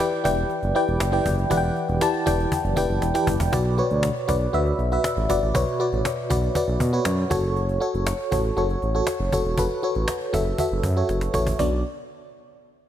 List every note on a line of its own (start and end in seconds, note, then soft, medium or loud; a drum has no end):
0.00 0.21 E3 medium
0.00 0.24 E4 medium
0.00 0.24 G4 medium
0.00 0.25 B4 medium
0.00 0.25 D5 medium
0.00 0.25 G5 loud
0.12 cajon slap soft
0.24 0.44 E1 medium
0.24 0.63 E4 medium
0.24 0.63 G4 medium
0.24 0.63 B4 medium
0.24 0.63 D5 medium
0.24 0.63 G5 loud
0.24 cajon bass loud
0.37 cajon slap soft
0.50 cajon slap soft
0.62 0.72 F#1 loud
0.62 cajon slap soft
0.75 1.04 E4 medium
0.75 1.04 G4 medium
0.75 1.04 B4 medium
0.75 1.04 D5 medium
0.75 1.04 G5 loud
0.75 cajon slap soft
0.88 0.98 E1 loud
0.88 cajon slap soft
1.00 1.20 F#1 medium
1.00 cajon slap loud
1.12 1.41 E4 medium
1.12 1.42 G4 medium
1.12 1.42 B4 medium
1.12 1.42 D5 medium
1.12 1.42 G5 loud
1.12 cajon slap soft
1.26 1.45 F#1 medium
1.26 cajon bass loud
1.38 cajon slap soft
1.50 1.70 E1 loud
1.50 2.22 E3 medium
1.50 1.89 E4 medium
1.50 1.89 G4 medium
1.50 1.89 B4 medium
1.50 1.89 D5 medium
1.50 1.57 F#5 medium
1.50 cajon bass loud
1.57 1.92 G5 loud
1.63 cajon slap soft
1.76 cajon slap soft
1.88 1.98 E1 loud
1.88 cajon slap soft
2.01 2.20 E4 medium
2.01 2.21 G4 medium
2.01 2.21 B4 medium
2.01 2.21 D5 medium
2.01 2.21 A5 loud
2.01 cajon slap loud
2.14 cajon slap soft
2.26 2.46 E1 loud
2.26 2.65 E4 medium
2.26 2.65 G4 medium
2.26 2.65 B4 medium
2.26 2.65 D5 medium
2.26 2.65 G5 loud
2.26 cajon bass loud
2.39 cajon slap soft
2.52 cajon bass loud
2.64 2.74 F#1 loud
2.64 cajon slap soft
2.76 2.86 E1 medium
2.76 3.05 E4 medium
2.76 3.06 G4 medium
2.76 3.06 B4 medium
2.76 3.06 D5 medium
2.76 3.06 G5 loud
2.76 cajon bass medium
2.90 2.99 F#1 medium
2.90 cajon slap soft
3.02 3.12 E1 medium
3.02 cajon slap medium
3.14 3.43 E4 medium
3.14 3.43 G4 medium
3.14 3.44 B4 medium
3.14 3.44 D5 medium
3.14 3.44 G5 medium
3.14 cajon slap medium
3.27 3.37 F#1 medium
3.27 cajon bass loud
3.40 3.49 E1 loud
3.40 cajon bass loud
3.52 3.81 B1 loud
3.52 4.25 B2 medium
3.52 3.72 F#4 medium
3.52 3.72 B4 medium
3.52 3.72 D5 loud
3.52 cajon bass loud
3.65 cajon slap soft
3.78 4.16 F#4 medium
3.78 4.16 B4 medium
3.78 4.17 C#5 loud
3.78 cajon slap soft
3.90 4.09 D2 medium
3.90 cajon slap soft
4.03 cajon slap loud
4.16 cajon slap soft
4.28 4.47 B1 medium
4.28 4.47 F#4 medium
4.28 4.47 B4 medium
4.28 4.48 D5 medium
4.28 cajon bass medium
4.41 cajon slap soft
4.53 4.72 D2 loud
4.53 4.82 F#4 medium
4.53 4.82 B4 medium
4.53 4.83 E5 loud
4.53 cajon slap soft
4.66 cajon slap soft
4.79 4.98 B1 medium
4.79 cajon slap soft
4.92 5.20 F#4 medium
4.92 5.21 B4 medium
4.92 5.21 E5 loud
4.92 cajon slap soft
5.04 cajon slap loud
5.17 5.26 A1 medium
5.17 cajon slap soft
5.29 5.39 G1 medium
5.29 5.48 F#4 medium
5.29 5.49 B4 medium
5.29 5.49 D5 loud
5.29 cajon bass medium
5.43 5.52 A1 medium
5.43 cajon slap soft
5.54 5.64 B1 loud
5.54 6.26 B2 medium
5.54 5.74 F#4 medium
5.54 5.74 B4 medium
5.54 5.74 C#5 loud
5.54 cajon bass loud
5.67 cajon slap soft
5.80 6.18 F#4 medium
5.80 6.18 B4 medium
5.80 6.18 D5 medium
5.80 cajon slap soft
5.92 6.02 A1 loud
5.92 cajon slap soft
6.05 cajon slap loud
6.17 cajon slap soft
6.30 6.49 B1 loud
6.30 6.49 F#4 medium
6.30 6.49 B4 medium
6.30 6.50 D5 medium
6.30 cajon bass loud
6.43 cajon slap soft
6.55 6.84 F#4 medium
6.55 6.84 B4 medium
6.55 6.85 D5 medium
6.55 cajon bass medium
6.68 6.77 B1 loud
6.68 cajon slap soft
6.80 6.99 B2 loud
6.80 cajon bass loud
6.93 7.22 F#4 loud
6.93 7.22 B4 medium
6.93 7.22 C#5 loud
6.93 cajon slap soft
7.05 7.25 F#2 medium
7.05 cajon slap loud
7.18 cajon slap soft
7.30 7.78 F#1 loud
7.30 7.71 F#4 loud
7.30 7.71 A4 medium
7.30 7.71 C#5 loud
7.30 cajon bass loud
7.44 cajon slap soft
7.56 cajon slap medium
7.69 cajon slap soft
7.80 8.19 F#4 medium
7.80 8.19 A4 medium
7.80 8.20 C#5 loud
7.80 cajon slap soft
7.94 8.13 F#1 medium
7.94 cajon slap soft
8.07 cajon slap loud
8.19 cajon slap soft
8.31 8.51 A1 medium
8.31 8.51 F#4 medium
8.31 8.51 A4 medium
8.31 8.51 C#5 medium
8.31 cajon bass loud
8.44 cajon slap soft
8.57 8.76 F#1 loud
8.57 8.86 F#4 medium
8.57 8.86 A4 medium
8.57 8.86 C#5 loud
8.57 cajon slap soft
8.70 cajon slap soft
8.82 9.01 A1 medium
8.82 cajon slap soft
8.94 9.23 F#4 medium
8.94 9.24 A4 medium
8.94 9.24 C#5 loud
8.94 cajon slap soft
9.07 cajon slap loud
9.20 9.29 F#1 medium
9.20 cajon slap soft
9.33 9.42 F#1 medium
9.33 9.52 F#4 medium
9.33 9.52 A4 medium
9.33 9.52 C#5 loud
9.33 cajon bass medium
9.45 9.55 E1 medium
9.45 cajon slap soft
9.58 9.67 F#1 loud
9.58 9.77 F#4 medium
9.58 9.77 A4 medium
9.58 9.78 B4 medium
9.58 cajon bass loud
9.70 cajon slap soft
9.82 10.21 F#4 medium
9.82 10.22 A4 medium
9.82 10.22 C#5 medium
9.82 cajon slap soft
9.95 10.05 A1 medium
9.95 cajon slap soft
10.08 cajon slap loud
10.20 cajon slap soft
10.33 10.53 F#1 loud
10.33 10.52 F#4 medium
10.33 10.53 A4 medium
10.33 10.53 E5 medium
10.33 cajon bass medium
10.46 cajon slap soft
10.58 10.87 F#4 medium
10.58 10.88 A4 medium
10.58 10.88 E5 medium
10.58 cajon bass medium
10.71 10.81 F#1 medium
10.71 cajon slap soft
10.83 11.03 F#2 loud
10.83 cajon bass medium
10.96 11.25 F#4 medium
10.96 11.25 A4 medium
10.96 11.26 C#5 medium
10.96 cajon slap soft
11.09 11.28 F#1 medium
11.09 cajon slap medium
11.21 cajon slap medium
11.34 11.53 A1 medium
11.34 11.53 F#4 medium
11.34 11.53 A4 medium
11.34 11.54 C#5 loud
11.34 cajon bass medium
11.47 cajon bass medium
11.59 11.83 B1 loud
11.59 11.83 B1 medium
11.59 11.83 B3 medium
11.59 11.83 D4 medium
11.59 11.83 F#4 medium
11.59 11.83 D5 medium
11.59 cajon bass loud